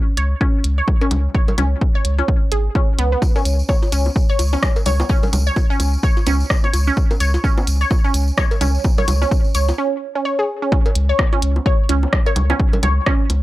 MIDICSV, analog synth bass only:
0, 0, Header, 1, 2, 480
1, 0, Start_track
1, 0, Tempo, 468750
1, 1377, Time_signature, 4, 2, 24, 8
1, 13751, End_track
2, 0, Start_track
2, 0, Title_t, "Analog synth bass"
2, 0, Program_c, 0, 38
2, 177, Note_on_c, 0, 37, 80
2, 348, Note_off_c, 0, 37, 0
2, 657, Note_on_c, 0, 37, 87
2, 828, Note_off_c, 0, 37, 0
2, 1137, Note_on_c, 0, 37, 85
2, 1308, Note_off_c, 0, 37, 0
2, 1618, Note_on_c, 0, 37, 98
2, 1788, Note_off_c, 0, 37, 0
2, 2097, Note_on_c, 0, 37, 82
2, 2268, Note_off_c, 0, 37, 0
2, 2577, Note_on_c, 0, 32, 84
2, 2748, Note_off_c, 0, 32, 0
2, 3057, Note_on_c, 0, 37, 85
2, 3228, Note_off_c, 0, 37, 0
2, 3536, Note_on_c, 0, 37, 100
2, 3707, Note_off_c, 0, 37, 0
2, 4017, Note_on_c, 0, 37, 81
2, 4188, Note_off_c, 0, 37, 0
2, 4497, Note_on_c, 0, 37, 87
2, 4668, Note_off_c, 0, 37, 0
2, 4976, Note_on_c, 0, 37, 86
2, 5147, Note_off_c, 0, 37, 0
2, 5456, Note_on_c, 0, 37, 104
2, 5627, Note_off_c, 0, 37, 0
2, 5937, Note_on_c, 0, 37, 81
2, 6108, Note_off_c, 0, 37, 0
2, 6416, Note_on_c, 0, 37, 89
2, 6587, Note_off_c, 0, 37, 0
2, 6896, Note_on_c, 0, 37, 86
2, 7068, Note_off_c, 0, 37, 0
2, 7376, Note_on_c, 0, 37, 101
2, 7547, Note_off_c, 0, 37, 0
2, 7857, Note_on_c, 0, 37, 82
2, 8028, Note_off_c, 0, 37, 0
2, 8336, Note_on_c, 0, 37, 94
2, 8507, Note_off_c, 0, 37, 0
2, 8817, Note_on_c, 0, 37, 89
2, 8988, Note_off_c, 0, 37, 0
2, 9297, Note_on_c, 0, 37, 103
2, 9468, Note_off_c, 0, 37, 0
2, 9777, Note_on_c, 0, 37, 82
2, 9948, Note_off_c, 0, 37, 0
2, 11217, Note_on_c, 0, 37, 106
2, 11388, Note_off_c, 0, 37, 0
2, 11697, Note_on_c, 0, 37, 81
2, 11868, Note_off_c, 0, 37, 0
2, 12177, Note_on_c, 0, 37, 89
2, 12348, Note_off_c, 0, 37, 0
2, 12658, Note_on_c, 0, 37, 87
2, 12828, Note_off_c, 0, 37, 0
2, 13137, Note_on_c, 0, 37, 101
2, 13308, Note_off_c, 0, 37, 0
2, 13618, Note_on_c, 0, 37, 84
2, 13751, Note_off_c, 0, 37, 0
2, 13751, End_track
0, 0, End_of_file